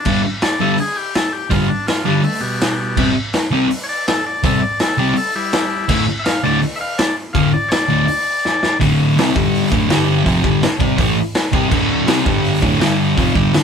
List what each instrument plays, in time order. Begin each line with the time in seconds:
Already playing: transistor combo organ D4
0.05 distorted electric guitar G2 D3 G3, kick, crash
0.41 transistor combo organ D5, snare, open hi-hat
0.60 distorted electric guitar G2 D3 G3, transistor combo organ A4
0.77 transistor combo organ G#4, open hi-hat
0.96 transistor combo organ G4
1.15 transistor combo organ A4, snare, open hi-hat
1.33 transistor combo organ G4
1.50 distorted electric guitar G2 D3 G3, transistor combo organ F4, kick, open hi-hat
1.68 transistor combo organ D4
1.87 transistor combo organ F4, snare, open hi-hat
2.05 distorted electric guitar G2 D3 G3, transistor combo organ D4
2.23 transistor combo organ A3, open hi-hat
2.40 transistor combo organ B2 G3
2.61 snare, open hi-hat
2.97 distorted electric guitar C3 G3 C4, kick, crash
3.33 snare, open hi-hat
3.51 distorted electric guitar C3 G3 C4
3.71 open hi-hat
3.84 transistor combo organ C#5
3.89 transistor combo organ D5
4.07 transistor combo organ A4, snare, open hi-hat
4.26 transistor combo organ D5
4.43 distorted electric guitar C3 G3 C4, transistor combo organ A4, kick, open hi-hat
4.62 transistor combo organ D5
4.79 transistor combo organ A4, snare, open hi-hat
4.97 distorted electric guitar C3 G3 C4, transistor combo organ D5
5.16 transistor combo organ A4, open hi-hat
5.35 transistor combo organ G3 E4
5.52 snare, open hi-hat
5.89 distorted electric guitar D2 A2 D3, kick, crash
6.19 transistor combo organ E5
6.24 transistor combo organ F5, snare, open hi-hat
6.43 distorted electric guitar D2 A2 D3, transistor combo organ D5
6.62 open hi-hat
6.76 transistor combo organ E5
6.81 transistor combo organ F5
6.98 transistor combo organ D5, snare, open hi-hat
7.33 distorted electric guitar D2 A2 D3, transistor combo organ F5, kick, open hi-hat
7.53 transistor combo organ D5
7.69 transistor combo organ C#5 D5, snare, open hi-hat
7.88 distorted electric guitar D2 A2 D3
8.08 open hi-hat
8.45 snare
8.63 snare
8.80 distorted electric guitar D2 A2 D3, kick, open hi-hat
9.17 distorted electric guitar C3 G3 C4, snare, open hi-hat
9.35 distorted electric guitar G2 D3 G3, kick
9.55 open hi-hat
9.70 distorted electric guitar D2 A2 D3, kick
9.89 distorted electric guitar G2 D3 G3, snare, open hi-hat
10.24 distorted electric guitar F2 C3 F3, kick, open hi-hat
10.42 distorted electric guitar G2 D3 G3, kick
10.61 muted distorted electric guitar stroke, snare, open hi-hat
10.79 distorted electric guitar C3 G3 C4, kick
10.98 distorted electric guitar A2 E3 A3, kick, open hi-hat
11.35 snare, open hi-hat
11.52 distorted electric guitar C3 G3 C4, kick
11.69 distorted electric guitar D2 A2 D3, kick, crash
12.06 distorted electric guitar C3 G3 C4, snare, open hi-hat
12.25 distorted electric guitar G2 D3 G3, kick
12.45 open hi-hat
12.61 distorted electric guitar D2 A2 D3, kick
12.81 distorted electric guitar G2 D3 G3, snare, open hi-hat
13.16 distorted electric guitar F2 C3 F3, kick, open hi-hat
13.35 distorted electric guitar G2 D3 G3, kick
13.53 muted distorted electric guitar stroke, snare, open hi-hat